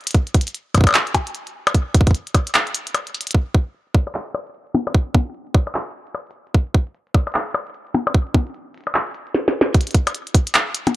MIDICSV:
0, 0, Header, 1, 3, 480
1, 0, Start_track
1, 0, Tempo, 400000
1, 174, Time_signature, 4, 2, 24, 8
1, 13153, End_track
2, 0, Start_track
2, 0, Title_t, "Percussion blips"
2, 894, Note_on_c, 9, 76, 52
2, 1014, Note_off_c, 9, 76, 0
2, 1043, Note_on_c, 9, 76, 50
2, 1066, Note_off_c, 9, 76, 0
2, 1066, Note_on_c, 9, 76, 41
2, 1088, Note_off_c, 9, 76, 0
2, 1088, Note_on_c, 9, 76, 34
2, 1112, Note_off_c, 9, 76, 0
2, 1112, Note_on_c, 9, 76, 28
2, 1232, Note_off_c, 9, 76, 0
2, 1374, Note_on_c, 9, 76, 80
2, 1494, Note_off_c, 9, 76, 0
2, 2003, Note_on_c, 9, 76, 81
2, 2123, Note_off_c, 9, 76, 0
2, 2815, Note_on_c, 9, 76, 54
2, 2935, Note_off_c, 9, 76, 0
2, 3534, Note_on_c, 9, 76, 52
2, 3654, Note_off_c, 9, 76, 0
2, 4735, Note_on_c, 9, 76, 49
2, 4855, Note_off_c, 9, 76, 0
2, 4883, Note_on_c, 9, 76, 48
2, 5003, Note_off_c, 9, 76, 0
2, 5214, Note_on_c, 9, 76, 73
2, 5334, Note_off_c, 9, 76, 0
2, 5695, Note_on_c, 9, 64, 84
2, 5815, Note_off_c, 9, 64, 0
2, 5844, Note_on_c, 9, 76, 71
2, 5964, Note_off_c, 9, 76, 0
2, 6174, Note_on_c, 9, 64, 77
2, 6294, Note_off_c, 9, 64, 0
2, 6654, Note_on_c, 9, 76, 48
2, 6774, Note_off_c, 9, 76, 0
2, 6803, Note_on_c, 9, 76, 48
2, 6923, Note_off_c, 9, 76, 0
2, 7375, Note_on_c, 9, 76, 46
2, 7495, Note_off_c, 9, 76, 0
2, 8575, Note_on_c, 9, 76, 48
2, 8695, Note_off_c, 9, 76, 0
2, 8723, Note_on_c, 9, 76, 45
2, 8843, Note_off_c, 9, 76, 0
2, 9054, Note_on_c, 9, 76, 69
2, 9174, Note_off_c, 9, 76, 0
2, 9534, Note_on_c, 9, 64, 78
2, 9654, Note_off_c, 9, 64, 0
2, 9683, Note_on_c, 9, 76, 69
2, 9803, Note_off_c, 9, 76, 0
2, 10013, Note_on_c, 9, 64, 80
2, 10133, Note_off_c, 9, 64, 0
2, 10642, Note_on_c, 9, 76, 47
2, 10762, Note_off_c, 9, 76, 0
2, 12084, Note_on_c, 9, 76, 53
2, 12204, Note_off_c, 9, 76, 0
2, 13043, Note_on_c, 9, 64, 82
2, 13153, Note_off_c, 9, 64, 0
2, 13153, End_track
3, 0, Start_track
3, 0, Title_t, "Drums"
3, 9, Note_on_c, 9, 42, 7
3, 46, Note_off_c, 9, 42, 0
3, 46, Note_on_c, 9, 42, 6
3, 83, Note_off_c, 9, 42, 0
3, 83, Note_on_c, 9, 42, 81
3, 129, Note_off_c, 9, 42, 0
3, 129, Note_on_c, 9, 42, 50
3, 174, Note_off_c, 9, 42, 0
3, 174, Note_on_c, 9, 36, 99
3, 174, Note_on_c, 9, 42, 51
3, 294, Note_off_c, 9, 36, 0
3, 294, Note_off_c, 9, 42, 0
3, 323, Note_on_c, 9, 42, 25
3, 414, Note_off_c, 9, 42, 0
3, 414, Note_on_c, 9, 36, 109
3, 414, Note_on_c, 9, 42, 82
3, 494, Note_off_c, 9, 42, 0
3, 494, Note_on_c, 9, 42, 67
3, 534, Note_off_c, 9, 36, 0
3, 563, Note_off_c, 9, 42, 0
3, 563, Note_on_c, 9, 42, 48
3, 574, Note_off_c, 9, 42, 0
3, 574, Note_on_c, 9, 42, 54
3, 654, Note_off_c, 9, 42, 0
3, 654, Note_on_c, 9, 42, 48
3, 774, Note_off_c, 9, 42, 0
3, 894, Note_on_c, 9, 36, 51
3, 894, Note_on_c, 9, 42, 87
3, 931, Note_off_c, 9, 36, 0
3, 931, Note_on_c, 9, 36, 63
3, 968, Note_off_c, 9, 36, 0
3, 968, Note_on_c, 9, 36, 80
3, 1005, Note_off_c, 9, 36, 0
3, 1005, Note_on_c, 9, 36, 93
3, 1014, Note_off_c, 9, 42, 0
3, 1043, Note_on_c, 9, 42, 50
3, 1125, Note_off_c, 9, 36, 0
3, 1134, Note_off_c, 9, 42, 0
3, 1134, Note_on_c, 9, 39, 112
3, 1134, Note_on_c, 9, 42, 51
3, 1254, Note_off_c, 9, 39, 0
3, 1254, Note_off_c, 9, 42, 0
3, 1283, Note_on_c, 9, 42, 25
3, 1374, Note_off_c, 9, 42, 0
3, 1374, Note_on_c, 9, 36, 77
3, 1374, Note_on_c, 9, 42, 89
3, 1494, Note_off_c, 9, 36, 0
3, 1494, Note_off_c, 9, 42, 0
3, 1523, Note_on_c, 9, 42, 51
3, 1615, Note_off_c, 9, 42, 0
3, 1615, Note_on_c, 9, 42, 48
3, 1735, Note_off_c, 9, 42, 0
3, 1763, Note_on_c, 9, 42, 26
3, 1883, Note_off_c, 9, 42, 0
3, 2003, Note_on_c, 9, 42, 51
3, 2094, Note_on_c, 9, 36, 97
3, 2095, Note_off_c, 9, 42, 0
3, 2095, Note_on_c, 9, 42, 52
3, 2214, Note_off_c, 9, 36, 0
3, 2215, Note_off_c, 9, 42, 0
3, 2334, Note_on_c, 9, 36, 106
3, 2334, Note_on_c, 9, 42, 91
3, 2408, Note_off_c, 9, 36, 0
3, 2408, Note_on_c, 9, 36, 87
3, 2454, Note_off_c, 9, 42, 0
3, 2483, Note_off_c, 9, 36, 0
3, 2483, Note_on_c, 9, 36, 75
3, 2483, Note_on_c, 9, 42, 51
3, 2528, Note_off_c, 9, 36, 0
3, 2528, Note_on_c, 9, 36, 60
3, 2575, Note_off_c, 9, 42, 0
3, 2575, Note_on_c, 9, 42, 51
3, 2648, Note_off_c, 9, 36, 0
3, 2695, Note_off_c, 9, 42, 0
3, 2724, Note_on_c, 9, 42, 27
3, 2814, Note_on_c, 9, 36, 111
3, 2815, Note_off_c, 9, 42, 0
3, 2815, Note_on_c, 9, 42, 90
3, 2934, Note_off_c, 9, 36, 0
3, 2935, Note_off_c, 9, 42, 0
3, 2963, Note_on_c, 9, 42, 51
3, 3054, Note_off_c, 9, 42, 0
3, 3054, Note_on_c, 9, 39, 110
3, 3054, Note_on_c, 9, 42, 52
3, 3174, Note_off_c, 9, 39, 0
3, 3174, Note_off_c, 9, 42, 0
3, 3203, Note_on_c, 9, 42, 25
3, 3294, Note_off_c, 9, 42, 0
3, 3294, Note_on_c, 9, 42, 92
3, 3414, Note_off_c, 9, 42, 0
3, 3443, Note_on_c, 9, 42, 54
3, 3534, Note_off_c, 9, 42, 0
3, 3534, Note_on_c, 9, 42, 52
3, 3654, Note_off_c, 9, 42, 0
3, 3683, Note_on_c, 9, 42, 27
3, 3774, Note_off_c, 9, 42, 0
3, 3774, Note_on_c, 9, 42, 54
3, 3849, Note_off_c, 9, 42, 0
3, 3849, Note_on_c, 9, 42, 64
3, 3923, Note_off_c, 9, 42, 0
3, 3923, Note_on_c, 9, 42, 73
3, 3969, Note_off_c, 9, 42, 0
3, 3969, Note_on_c, 9, 42, 80
3, 4014, Note_on_c, 9, 36, 92
3, 4089, Note_off_c, 9, 42, 0
3, 4134, Note_off_c, 9, 36, 0
3, 4163, Note_on_c, 9, 42, 26
3, 4254, Note_on_c, 9, 36, 106
3, 4283, Note_off_c, 9, 42, 0
3, 4374, Note_off_c, 9, 36, 0
3, 4494, Note_on_c, 9, 42, 50
3, 4614, Note_off_c, 9, 42, 0
3, 4644, Note_on_c, 9, 42, 25
3, 4734, Note_on_c, 9, 36, 108
3, 4764, Note_off_c, 9, 42, 0
3, 4854, Note_off_c, 9, 36, 0
3, 4974, Note_on_c, 9, 39, 104
3, 5094, Note_off_c, 9, 39, 0
3, 5123, Note_on_c, 9, 42, 24
3, 5214, Note_off_c, 9, 42, 0
3, 5214, Note_on_c, 9, 42, 84
3, 5334, Note_off_c, 9, 42, 0
3, 5363, Note_on_c, 9, 42, 51
3, 5454, Note_off_c, 9, 42, 0
3, 5454, Note_on_c, 9, 42, 46
3, 5574, Note_off_c, 9, 42, 0
3, 5603, Note_on_c, 9, 42, 26
3, 5695, Note_off_c, 9, 42, 0
3, 5695, Note_on_c, 9, 42, 89
3, 5815, Note_off_c, 9, 42, 0
3, 5844, Note_on_c, 9, 42, 22
3, 5866, Note_off_c, 9, 42, 0
3, 5866, Note_on_c, 9, 42, 25
3, 5889, Note_off_c, 9, 42, 0
3, 5889, Note_on_c, 9, 42, 28
3, 5934, Note_on_c, 9, 36, 99
3, 6009, Note_off_c, 9, 42, 0
3, 6054, Note_off_c, 9, 36, 0
3, 6174, Note_on_c, 9, 36, 109
3, 6294, Note_off_c, 9, 36, 0
3, 6414, Note_on_c, 9, 42, 50
3, 6534, Note_off_c, 9, 42, 0
3, 6563, Note_on_c, 9, 42, 25
3, 6654, Note_on_c, 9, 36, 112
3, 6683, Note_off_c, 9, 42, 0
3, 6774, Note_off_c, 9, 36, 0
3, 6894, Note_on_c, 9, 39, 111
3, 7014, Note_off_c, 9, 39, 0
3, 7043, Note_on_c, 9, 42, 24
3, 7163, Note_off_c, 9, 42, 0
3, 7283, Note_on_c, 9, 42, 50
3, 7375, Note_off_c, 9, 42, 0
3, 7375, Note_on_c, 9, 42, 50
3, 7495, Note_off_c, 9, 42, 0
3, 7524, Note_on_c, 9, 42, 25
3, 7569, Note_off_c, 9, 42, 0
3, 7569, Note_on_c, 9, 42, 89
3, 7689, Note_off_c, 9, 42, 0
3, 7764, Note_on_c, 9, 42, 49
3, 7854, Note_on_c, 9, 36, 98
3, 7884, Note_off_c, 9, 42, 0
3, 7974, Note_off_c, 9, 36, 0
3, 8004, Note_on_c, 9, 42, 24
3, 8094, Note_on_c, 9, 36, 112
3, 8124, Note_off_c, 9, 42, 0
3, 8214, Note_off_c, 9, 36, 0
3, 8244, Note_on_c, 9, 42, 46
3, 8335, Note_off_c, 9, 42, 0
3, 8335, Note_on_c, 9, 42, 48
3, 8455, Note_off_c, 9, 42, 0
3, 8484, Note_on_c, 9, 42, 25
3, 8574, Note_on_c, 9, 36, 114
3, 8575, Note_off_c, 9, 42, 0
3, 8575, Note_on_c, 9, 42, 40
3, 8624, Note_off_c, 9, 42, 0
3, 8624, Note_on_c, 9, 42, 47
3, 8654, Note_off_c, 9, 42, 0
3, 8654, Note_on_c, 9, 42, 53
3, 8694, Note_off_c, 9, 36, 0
3, 8723, Note_off_c, 9, 42, 0
3, 8723, Note_on_c, 9, 42, 61
3, 8734, Note_off_c, 9, 42, 0
3, 8734, Note_on_c, 9, 42, 67
3, 8784, Note_off_c, 9, 42, 0
3, 8784, Note_on_c, 9, 42, 73
3, 8814, Note_off_c, 9, 42, 0
3, 8814, Note_on_c, 9, 39, 114
3, 8814, Note_on_c, 9, 42, 50
3, 8934, Note_off_c, 9, 39, 0
3, 8934, Note_off_c, 9, 42, 0
3, 8963, Note_on_c, 9, 42, 24
3, 9054, Note_off_c, 9, 42, 0
3, 9054, Note_on_c, 9, 42, 84
3, 9174, Note_off_c, 9, 42, 0
3, 9203, Note_on_c, 9, 42, 49
3, 9294, Note_off_c, 9, 42, 0
3, 9294, Note_on_c, 9, 42, 49
3, 9414, Note_off_c, 9, 42, 0
3, 9443, Note_on_c, 9, 42, 25
3, 9534, Note_off_c, 9, 42, 0
3, 9534, Note_on_c, 9, 42, 87
3, 9654, Note_off_c, 9, 42, 0
3, 9683, Note_on_c, 9, 42, 50
3, 9773, Note_on_c, 9, 36, 97
3, 9803, Note_off_c, 9, 42, 0
3, 9893, Note_off_c, 9, 36, 0
3, 9922, Note_on_c, 9, 42, 25
3, 10013, Note_on_c, 9, 36, 114
3, 10042, Note_off_c, 9, 42, 0
3, 10133, Note_off_c, 9, 36, 0
3, 10162, Note_on_c, 9, 42, 46
3, 10254, Note_off_c, 9, 42, 0
3, 10254, Note_on_c, 9, 42, 48
3, 10374, Note_off_c, 9, 42, 0
3, 10493, Note_on_c, 9, 42, 77
3, 10531, Note_off_c, 9, 42, 0
3, 10531, Note_on_c, 9, 42, 64
3, 10568, Note_off_c, 9, 42, 0
3, 10568, Note_on_c, 9, 42, 53
3, 10605, Note_off_c, 9, 42, 0
3, 10605, Note_on_c, 9, 42, 43
3, 10642, Note_off_c, 9, 42, 0
3, 10642, Note_on_c, 9, 42, 46
3, 10734, Note_off_c, 9, 42, 0
3, 10734, Note_on_c, 9, 39, 109
3, 10734, Note_on_c, 9, 42, 48
3, 10854, Note_off_c, 9, 39, 0
3, 10854, Note_off_c, 9, 42, 0
3, 10883, Note_on_c, 9, 42, 24
3, 10974, Note_off_c, 9, 42, 0
3, 10974, Note_on_c, 9, 42, 83
3, 11094, Note_off_c, 9, 42, 0
3, 11123, Note_on_c, 9, 42, 47
3, 11214, Note_on_c, 9, 38, 62
3, 11243, Note_off_c, 9, 42, 0
3, 11334, Note_off_c, 9, 38, 0
3, 11374, Note_on_c, 9, 38, 81
3, 11494, Note_off_c, 9, 38, 0
3, 11534, Note_on_c, 9, 38, 89
3, 11654, Note_off_c, 9, 38, 0
3, 11694, Note_on_c, 9, 36, 102
3, 11694, Note_on_c, 9, 42, 51
3, 11769, Note_off_c, 9, 42, 0
3, 11769, Note_on_c, 9, 42, 42
3, 11814, Note_off_c, 9, 36, 0
3, 11843, Note_off_c, 9, 42, 0
3, 11843, Note_on_c, 9, 42, 37
3, 11889, Note_off_c, 9, 42, 0
3, 11889, Note_on_c, 9, 42, 30
3, 11934, Note_off_c, 9, 42, 0
3, 11934, Note_on_c, 9, 36, 115
3, 11934, Note_on_c, 9, 42, 92
3, 12054, Note_off_c, 9, 36, 0
3, 12054, Note_off_c, 9, 42, 0
3, 12084, Note_on_c, 9, 42, 54
3, 12174, Note_off_c, 9, 42, 0
3, 12174, Note_on_c, 9, 42, 53
3, 12294, Note_off_c, 9, 42, 0
3, 12323, Note_on_c, 9, 42, 28
3, 12414, Note_on_c, 9, 36, 115
3, 12415, Note_off_c, 9, 42, 0
3, 12415, Note_on_c, 9, 42, 94
3, 12534, Note_off_c, 9, 36, 0
3, 12535, Note_off_c, 9, 42, 0
3, 12563, Note_on_c, 9, 42, 53
3, 12655, Note_off_c, 9, 42, 0
3, 12655, Note_on_c, 9, 39, 117
3, 12655, Note_on_c, 9, 42, 55
3, 12775, Note_off_c, 9, 39, 0
3, 12775, Note_off_c, 9, 42, 0
3, 12894, Note_on_c, 9, 42, 98
3, 13014, Note_off_c, 9, 42, 0
3, 13043, Note_on_c, 9, 42, 55
3, 13153, Note_off_c, 9, 42, 0
3, 13153, End_track
0, 0, End_of_file